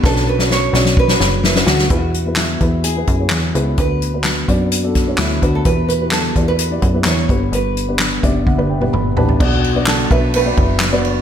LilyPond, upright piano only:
\new Staff \with { instrumentName = "Upright piano" } { \time 4/4 \key b \minor \tempo 4 = 128 << { r1 | b,4. r2 r8 | d4. r2 r8 | b,4. r2 <g, d>8~ |
<g, d>4 r8 e''8 fis''8 g''8 b''8 a''8 | r1 | } \\ { <cis' d' fis' b'>8 r16 <cis' d' fis' b'>8 r16 <cis' d' fis' d''>8 r16 <cis' d' fis' b'>8. r16 <cis' d' fis' b'>8 r16 | <b e' gis' b'>8 r16 <b e' gis' b'>8 r16 <b e' gis' b'>8 r16 <b e' gis' b'>16 r16 <b e' gis' cis''>8 r16 <b e' gis' b'>16 r16 | <b d' fis' b'>8 r16 <b d' fis' b'>8 r16 <b d' fis' d''>8 r16 <b d' fis' a'>16 r16 <b d' fis' cis''>8 r16 <b d' fis' b'>16 r16 | <b e' g' b'>8 r16 <b e' g' b'>8 r16 <b e' g' d''>8 r16 <b e' g' d''>16 r16 <b e' g' b'>8 r16 <b d' g' b'>8~ |
<b d' g' b'>8 r16 <b d' g' b'>8 r16 <b d' g' d''>8 r16 <b d' g' b'>16 r16 <b d' g' b'>8 r16 <b d' g' b'>16 r16 | <b d' fis' b' d''>8 r16 <b d' fis' b' d''>8 r16 <b d' fis' b' e''>8 r16 <b d' fis' b' d''>8. r16 <b d' fis' b' d''>8 r16 | } >> }